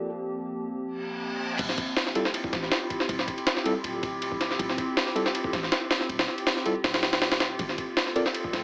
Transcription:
Already playing: F3 A#3 C4 G4 A5
0.84 reverse cymbal
1.59 D1 C4 E4 F4 G4, kick, crash, ride
1.69 snare
1.78 kick, ride
1.97 snare, open hi-hat
2.07 snare
2.15 G3 C4 E4 F4 A4, ride
2.25 snare
2.34 ride
2.44 kick
2.53 A1, snare, ride
2.63 snare
2.72 snare, ride
2.90 kick, ride
3.00 snare
3.09 D1, kick, ride
3.19 snare
3.28 kick, ride
3.38 ride
3.47 snare, ride
3.57 snare
3.65 G3 C4 E4 F4 A4, ride
3.84 D1, ride
4.03 kick, ride
4.22 ride
4.32 kick
4.41 snare, ride
4.51 snare
4.59 D1, kick, ride
4.69 snare
4.78 kick, ride
4.97 snare, open hi-hat
5.07 snare
5.15 G3 C4 E4 F4 A4, ride
5.26 snare
5.35 ride
5.44 kick
5.53 A1, snare, ride
5.63 snare
5.72 snare, ride
5.91 snare, open hi-hat
6.01 snare
6.09 D1, ride
6.19 snare, open hi-hat
6.28 snare
6.38 ride
6.47 snare, open hi-hat
6.57 snare
6.65 G3 C4 E4 F4 A4, ride
6.84 D1, snare, open hi-hat
6.94 snare, open hi-hat
7.03 snare, open hi-hat
7.13 snare, open hi-hat
7.22 snare, open hi-hat
7.32 snare, open hi-hat
7.40 snare, ride
7.59 G1 A#3 C4 A4, kick, ride
7.69 snare
7.78 kick, ride
7.97 snare, open hi-hat
8.07 snare
8.16 C4 F4 A4 A#4 D5, ride
8.26 snare
8.34 ride
8.44 kick
8.53 D1, snare, ride

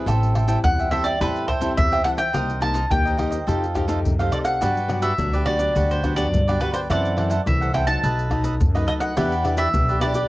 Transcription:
Already playing: G3 C4 E4
0.06 A1 A2 A4 C5 E5 G5, pandeiro, tamborim, shaker, surdo
0.23 pandeiro, shaker
0.35 A4 C5 E5 G5, pandeiro, tamborim
0.47 G3 C4 E4 A4 C5 E5 G5, pandeiro, shaker
0.64 E2 E3 F#5, pandeiro, shaker, surdo
0.79 C5 E5 G5, pandeiro, shaker
0.91 G3 C4 E4 A4 C5 E5 G5, pandeiro, tamborim
1.04 C5 D5 E5 G5, pandeiro, shaker
1.21 E2 A2 G3 C4 E4 A4 B4 C5 E5 G5, pandeiro, shaker, surdo
1.36 pandeiro, shaker
1.48 A4 C5 E5 G5, pandeiro, tamborim, surdo
1.61 G3 C4 E4 A4 C5 E5 G5, pandeiro, shaker
1.77 E2 E3 E5, pandeiro, shaker, surdo
1.92 C5 E5 G5, pandeiro, tamborim, shaker
2.04 G3 C4 E4 A4 C5 E5 F#5 G5, pandeiro, tamborim
2.17 C5 E5 G5, pandeiro, tamborim, shaker
2.33 C2 C3 A#3 D#4 G4 A#4 C5 D#5, pandeiro, tamborim, shaker, surdo
2.50 pandeiro, shaker
2.61 A#3 D#4 G4 A#4 C5 D#5 A5, pandeiro, tamborim
2.74 D#4 A#4 C5 D#5, pandeiro, shaker
2.91 D#2 G2 A#3 D#4 G4 G5, pandeiro, shaker, surdo
3.05 A#4 C5 D#5, pandeiro, shaker
3.18 A#3 D#4 G4 A#4 C5 D#5, pandeiro, tamborim
3.31 A#4 C5 D#5, pandeiro, shaker
3.47 F2 F3 A3 D#4 G4 A4 C5 F5, pandeiro, shaker, surdo
3.64 pandeiro, shaker
3.74 A3 D#4 G4 A4 C5 F5, pandeiro, tamborim, shaker, surdo
3.88 A3 D#4 G4 A4 C5 F5, pandeiro, shaker
4.05 F#2 C3, pandeiro, shaker, surdo
4.19 A3 D#4 G4 A4 C5 F5, pandeiro, tamborim, shaker
4.32 D#4 A4 C5 D5 F5, pandeiro, tamborim, shaker
4.44 A4 C5 F5 F#5, pandeiro, tamborim, shaker
4.61 G2 F#3 B3 D4 F#4 G4 B4 D5, pandeiro, tamborim, shaker, surdo
4.77 pandeiro, shaker
4.88 F#3 B3 D4 F#4 G4 B4 D5, pandeiro, tamborim
5.02 F#4 G4 B4 D5 E5, pandeiro, shaker
5.18 D2 D3 F#3 B3 D4, pandeiro, shaker, surdo
5.33 G4 B4 D5, pandeiro, shaker
5.45 F#3 B3 D4 F#4 G4 B4 D5, pandeiro, tamborim
5.59 F#3 B3 D4 G4 B4 D5, pandeiro, shaker
5.75 D2 G2 F#4 G4 B4 D5, pandeiro, shaker, surdo
5.91 C5, pandeiro, shaker
6.03 F#3 B3 D4 F#4 G4 B4 D5, pandeiro, tamborim, shaker, surdo
6.16 F#3 B3 D4 F#4 G4 B4 D5, pandeiro, shaker
6.32 G2 D3, pandeiro, shaker, surdo
6.48 F#3 B3 D4 G4 B4 D5, pandeiro, tamborim, shaker
6.60 F#4 G4 B4 D5, pandeiro, tamborim
6.73 G4 B4 C5 D5, pandeiro, tamborim, shaker
6.89 F#2 E3 A3 C4 E4 A4 C5 D5 F#5, pandeiro, tamborim, shaker, surdo
7.05 pandeiro, shaker
7.16 E3 A3 C4 E4 A4 C5 F#5, pandeiro, tamborim
7.30 E4 A4 C5 F#5, pandeiro, shaker
7.46 C2 F#2 E3 A3 C4 E5, pandeiro, shaker, surdo
7.61 A4 C5 F#5, pandeiro, shaker
7.74 E3 A3 C4 E4 A4 C5 F#5 G5, pandeiro, tamborim
7.87 F#3 A3 D#4 A4 C5 F#5 A5, pandeiro, shaker
8.03 B1 B2 A4 B4 D#5, pandeiro, shaker, surdo
8.19 pandeiro, shaker
8.30 F#3 A3 D#4 A4 B4 D#5, pandeiro, tamborim, surdo
8.44 A4 B4 D#5, pandeiro, shaker
8.60 F#2, pandeiro, shaker, surdo
8.75 F#3 A3 D#4 B4 D#5, pandeiro, tamborim, shaker
8.87 A4 B4 D#5, pandeiro, tamborim
9.00 B4 D#5 F#5, pandeiro, tamborim, shaker
9.17 E2 E3 B3 D4 E4 G4 B4 D5, pandeiro, tamborim, shaker, surdo
9.32 pandeiro, shaker
9.44 B3 D4 E4 G4 B4 D5, pandeiro, tamborim
9.57 E4 G4 B4 D5 E5, pandeiro, shaker
9.74 B1 B2 B3 D4 G4, pandeiro, shaker, surdo
9.89 G4 B4 D5, pandeiro, shaker
10.01 B3 D4 E4 G4 B4 D5, pandeiro, tamborim, shaker
10.14 B3 D4 G4 B4 D5, pandeiro, shaker

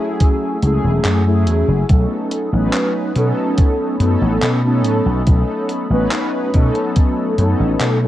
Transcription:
Already playing: F#3 A3 C#4 E4 G#4 F#5 G#5 E6
0.20 kick, closed hi-hat
0.62 C#2 F#3 A3 C#4 E4 G#4, closed hi-hat
0.84 E1
1.05 F#2, clap, closed hi-hat
1.26 F#3 A3 C#4 E4 G#4
1.47 E2, closed hi-hat
1.68 F#1
1.89 B1 F#3 B3 C#4 D#4 A4 C#5 B5 D#6, kick, closed hi-hat
2.31 closed hi-hat
2.53 A1 F#3 B3 C#4 D#4 B4
2.73 clap, closed hi-hat
3.16 B2 F#3 B3 C#4 D#4 A4, closed hi-hat
3.58 kick, closed hi-hat
4.00 F#2 F#3 B3 C#4 D#4 A4, closed hi-hat
4.21 A1
4.42 B2, clap, closed hi-hat
4.64 F#3 B3 C#4 D#4 A4
4.84 A2, closed hi-hat
5.06 B1
5.27 B1 F#3 B3 C#4 D#4 A4, kick, closed hi-hat
5.69 closed hi-hat
5.90 A1 F#3 B3 C#4 D#4 B4
6.11 clap, closed hi-hat
6.54 B2 F#3 B3 C#4 D#4 A4, kick, closed hi-hat
6.75 closed hi-hat
6.96 kick, closed hi-hat
7.38 F#2 F#3 B3 C#4 D#4 A4, closed hi-hat
7.60 A1
7.81 B2, clap, closed hi-hat
8.02 F#3 B3 C#4 D#4 A4

